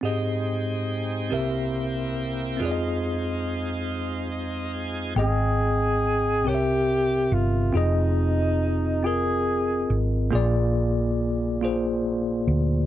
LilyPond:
<<
  \new Staff \with { instrumentName = "Alto saxophone" } { \time 6/8 \key aes \major \tempo 4. = 47 r2. | r2. | aes'4. g'4 f'8 | ees'4. aes'4 r8 |
r2. | }
  \new Staff \with { instrumentName = "Tine electric piano" } { \time 6/8 \key aes \major <c' g' aes' ees''>4. <c' g' bes' e''>4. | <c' f' aes' d'' ees''>2. | <ces' c' aes' ees'' g''>4 r8 <c' g' bes' des'' e''>4 r8 | <c' f' aes' ees''>4 r8 <c' f' aes' bes'>4 r8 |
<bes f' aes' d''>4 r8 <bes f' aes' c''>4 r8 | }
  \new Staff \with { instrumentName = "Tine electric piano" } { \clef bass \time 6/8 \key aes \major aes,4. <c, c>4. | f,2. | aes,4. c4. | r2. |
bes,4. r4. | }
  \new Staff \with { instrumentName = "Tonewheel organ" } { \time 6/8 \key aes \major << { r2. | r2 ees''8 aes''8 | r2. | r2. |
r2. | } \\ { <aes ees' c'' g''>4. <bes e' g' c''>4. | <aes ees' f' ces'' c''>2. | r2. | r2. |
r2. | } >> }
  \new Staff \with { instrumentName = "Fingered electric bass" } { \clef bass \time 6/8 \key aes \major r2. | r2. | aes,,4. c,4 g,,8 | f,,2~ f,,8 aes,,8 |
bes,,2~ bes,,8 d,8 | }
>>